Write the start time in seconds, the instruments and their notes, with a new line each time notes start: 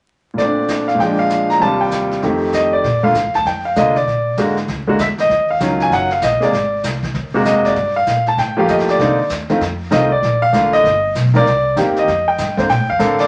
0.34 grand piano A#2 A3
0.38 grand piano C4 D5, brush sweep, kick, snare
0.45 grand piano D4
0.68 kick, snare, hi-hat pedal
0.88 grand piano F5, snare
0.95 grand piano A#2 F3
0.99 grand piano G#3 G5, brush sweep, kick, snare
1.06 grand piano D4
1.19 grand piano F5
1.30 kick, snare, hi-hat pedal
1.50 grand piano A#5, snare
1.59 grand piano D#2 C3 G3 A5, brush sweep, kick, snare
1.64 grand piano F4
1.81 grand piano G5
1.91 kick, snare, hi-hat pedal
2.11 snare
2.22 grand piano F2 D#3 A3 G4, brush sweep, kick, snare
2.53 grand piano D#5, kick, snare, hi-hat pedal
2.73 grand piano D5
2.84 upright bass A#2, brush sweep, kick, snare
3.03 grand piano D3 A3 A#3 F4 F5
3.14 upright bass A2, kick, snare, hi-hat pedal
3.25 upright bass F2
3.34 upright bass D2, grand piano A5, snare
3.45 upright bass F2, grand piano G5, brush sweep, kick, snare
3.65 grand piano F5
3.76 upright bass C3, grand piano D3 A3 A#3 F4 D#5, kick, snare, hi-hat pedal
3.96 grand piano D5, snare
4.07 upright bass A#2, brush sweep, kick, snare
4.37 upright bass G#2, grand piano D3 G#3 A#3 F#4, kick, snare, hi-hat pedal
4.57 snare
4.68 upright bass C#2, brush sweep, kick, snare
4.87 grand piano D3 G#3 A#3 F#4
4.99 upright bass E2, grand piano E5, kick, snare, hi-hat pedal
5.18 grand piano D#5, snare
5.29 upright bass D#2, brush sweep, kick, snare
5.50 grand piano F5
5.60 upright bass C#2, grand piano D#3 F#3 C#4 F4, kick, snare, hi-hat pedal
5.80 grand piano G#5, snare
5.91 upright bass F#1, grand piano F#5, brush sweep, kick, snare
6.10 grand piano F5, snare
6.22 upright bass A#1, grand piano D#5, kick, snare, hi-hat pedal
6.40 grand piano C3 G#3 A#3 G#4 D5, muted upright bass stroke, snare
6.53 upright bass G#1, brush sweep, kick, snare
6.84 upright bass C2, kick, snare, hi-hat pedal
7.03 kick, snare
7.14 upright bass D#2, brush sweep, kick, snare
7.34 grand piano C3 G#3 A#3 F#4, muted upright bass stroke
7.45 upright bass F2, grand piano D#5, kick, snare, hi-hat pedal
7.65 grand piano D5, snare
7.75 upright bass G2, brush sweep, kick, snare
7.96 grand piano F5
8.06 upright bass A#2, kick, snare, hi-hat pedal
8.26 grand piano A5, snare
8.37 upright bass A2, grand piano G5, brush sweep, kick, snare
8.57 grand piano F3 A3 A#3 G4 F5
8.68 upright bass F2, grand piano D#5, kick, snare, hi-hat pedal
8.78 snare
8.87 grand piano D5, muted upright bass stroke, snare
8.99 upright bass C2, grand piano D3 A#3 C4 D#4, brush sweep, kick, snare
9.18 muted upright bass stroke
9.29 upright bass D#2, kick, snare, hi-hat pedal
9.49 grand piano D#3 A3 C4 F4, snare
9.60 upright bass F2, brush sweep, kick, snare
9.91 upright bass C2, grand piano D#3 A3 C4 F4 D#5, kick, snare, hi-hat pedal
10.12 grand piano D5
10.22 upright bass A#1, brush sweep, kick, snare
10.42 grand piano F5
10.53 upright bass A1, grand piano D3 A3 A#3 F4, kick, snare, hi-hat pedal
10.73 grand piano D#5, snare
10.84 upright bass G1, brush sweep, kick, snare
11.15 upright bass B1, kick, snare, hi-hat pedal
11.34 grand piano D#3 A#3 C4 A#4 D5, snare
11.45 upright bass C2, brush sweep, kick, snare
11.76 upright bass D#2, grand piano D#3 A#3 C4 G4, kick, snare, hi-hat pedal
11.96 grand piano D#5, snare
12.07 upright bass F2, brush sweep, kick, snare
12.28 grand piano G5
12.38 upright bass G2, kick, snare, hi-hat pedal
12.57 grand piano D3 A#3 C4 C5, kick, snare
12.69 upright bass A#2, grand piano G5, brush sweep, kick, snare
12.80 upright bass A2
12.90 upright bass F2, grand piano F5
12.99 upright bass A2, grand piano D3 C4 A4 A#4, kick, snare, hi-hat pedal
13.18 grand piano D5, snare